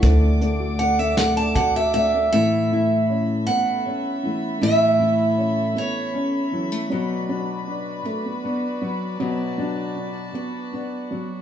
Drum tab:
HH |xxxxxx|------|------|------|
SD |---o--|------|------|------|
BD |o---o-|------|------|------|

HH |------|
SD |------|
BD |------|